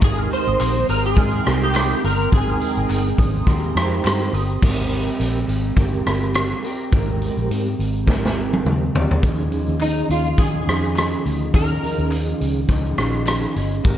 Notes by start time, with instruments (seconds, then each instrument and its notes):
Already playing: clean electric guitar D#3
0.01 fingered electric bass G#1, clean electric guitar G#3 C4 G4 G#4 A#4, tonewheel organ G#3 C4 D#4 G4 A#4, analog synth pad G#3 G5 A#5 C6, kick, closed hi-hat, shaker
0.19 synth bell F6, shaker
0.31 clean electric guitar C5, closed hi-hat, shaker
0.46 fingered electric bass G#1, synth bell D#6, shaker
0.60 fingered electric bass A#1, clap, closed hi-hat, shaker
0.76 shaker
0.89 fingered electric bass G#1, clean electric guitar A#4, synth bell D#6, closed hi-hat, shaker
1.04 clean electric guitar G#4, shaker
1.16 fingered electric bass G#2, clean electric guitar G#3 C4 A#4, synth bell F6, kick, closed hi-hat, shaker
1.33 shaker
1.45 fingered electric bass C2, tonewheel organ G#3 C4 D#4 G4 A#4, cross-stick, closed hi-hat, shaker
1.62 clean electric guitar G4, synth bell D#6, shaker
1.74 cross-stick, clap, closed hi-hat, shaker
1.91 shaker
2.04 fingered electric bass G1, clean electric guitar A#4, closed hi-hat, shaker
2.19 shaker
2.31 fingered electric bass G#1, tonewheel organ G#3 C4 D#4 A#4 G5, clean electric guitar G#3 C4 G#4 A#4, kick, closed hi-hat, shaker
2.49 synth bell F6, shaker
2.61 closed hi-hat, shaker
2.77 fingered electric bass G#1, synth bell D#6, shaker
2.90 fingered electric bass G1, clap, closed hi-hat, shaker
3.06 shaker
3.18 fingered electric bass G#1, synth bell D#6, kick, closed hi-hat, shaker
3.34 shaker
3.47 fingered electric bass D#2, clean electric guitar G#3 C4 G4 A#4, synth bell C6, kick, closed hi-hat, shaker
3.63 shaker
3.75 fingered electric bass F2, tonewheel organ G#3 C4 D#4 G4 C5, clean electric guitar G4 A#4, synth bell A#5, cross-stick, closed hi-hat, shaker
3.79 clean electric guitar C4
3.92 shaker
4.04 fingered electric bass G2, synth bell C6, cross-stick, clap, closed hi-hat, shaker
4.22 shaker
4.33 fingered electric bass G1, synth bell D#6, closed hi-hat, shaker
4.50 shaker
4.62 fingered electric bass G#1, tonewheel organ G#3 B3 G4 A#4, clean electric guitar G#3 C4, kick, crash
4.66 tonewheel organ C4, clean electric guitar G4 A#4
4.79 shaker
4.92 closed hi-hat, shaker
5.07 shaker
5.20 fingered electric bass A#1, closed hi-hat, shaker
5.36 shaker
5.48 fingered electric bass G#1, closed hi-hat, shaker
5.64 shaker
5.76 fingered electric bass G1, tonewheel organ G#3 C4 G4 A#4, clean electric guitar G#3 C4 G4 A#4, kick, closed hi-hat, shaker
5.93 shaker
6.06 fingered electric bass G1, cross-stick, closed hi-hat, shaker
6.22 shaker
6.34 cross-stick, closed hi-hat, shaker
6.50 shaker
6.64 clean electric guitar C4 G4 A#4, closed hi-hat, shaker
6.80 shaker
6.91 fingered electric bass G#1, tonewheel organ G#3 C4 G4 A4, clean electric guitar G#3 C4, kick, closed hi-hat, shaker
6.95 clean electric guitar G4 A#4
7.00 tonewheel organ A#4
7.09 shaker
7.22 closed hi-hat, shaker
7.37 fingered electric bass A#1, shaker
7.50 fingered electric bass G#2, closed hi-hat, shaker
7.66 shaker
7.79 fingered electric bass G#1, closed hi-hat, shaker
7.95 shaker
8.06 tonewheel organ G#3 C4 G4 A#4, clean electric guitar G#3 C4 G4 A#4, kick, snare
8.25 snare
8.53 high tom
8.65 fingered electric bass D#2, mid tom
8.95 fingered electric bass D2, clean electric guitar C4 G4 A#4, floor tom
9.11 floor tom
9.21 fingered electric bass D#2, clean electric guitar D#3 F3 C#4, tonewheel organ F3 C#4 D#4 G#4, kick, closed hi-hat, shaker
9.26 clean electric guitar D#4 G#4
9.40 shaker
9.50 tonewheel organ F3 C#4 D#4 G#4, closed hi-hat, shaker
9.68 fingered electric bass D#2, shaker
9.80 clean electric guitar D#4, clap, closed hi-hat, shaker
9.98 shaker
10.10 fingered electric bass D#2, clean electric guitar F4, closed hi-hat, shaker
10.27 shaker
10.38 clean electric guitar D#3 F3 C#4 D#4 G#4, fingered electric bass D#3, kick, closed hi-hat, shaker
10.42 clean electric guitar G#4
10.55 shaker
10.67 fingered electric bass F2, tonewheel organ F3 C#4 D#4 G#4, cross-stick, closed hi-hat, shaker
10.85 shaker
10.96 cross-stick, clap, closed hi-hat, shaker
11.13 shaker
11.26 fingered electric bass D2, closed hi-hat, shaker
11.42 shaker
11.53 fingered electric bass D#2, clean electric guitar D#3 F3 C#4 A#4, tonewheel organ F3 C#4 D#4 G#4, kick, closed hi-hat, shaker
11.57 clean electric guitar D#4 G#4
11.71 shaker
11.82 tonewheel organ F3 C#4 D#4 G#4, closed hi-hat, shaker
11.98 fingered electric bass D#2, shaker
12.11 clap, closed hi-hat, shaker
12.28 shaker
12.41 fingered electric bass C#2, closed hi-hat, shaker
12.57 shaker
12.69 fingered electric bass C#2, clean electric guitar D#3 F3 C#4 D#4 G#4, kick, closed hi-hat, shaker
12.85 shaker
12.97 fingered electric bass A#1, tonewheel organ F3 C#4 D#4 G#4, cross-stick, closed hi-hat, shaker
13.14 shaker
13.26 cross-stick, clap, closed hi-hat, shaker
13.43 shaker
13.56 fingered electric bass G1, clean electric guitar C#4 D#4 G#4, closed hi-hat, shaker
13.72 shaker
13.84 fingered electric bass G#1, tonewheel organ G#3 C4 G4 A#4, clean electric guitar G#3 C4 G4 A#4, kick, closed hi-hat, shaker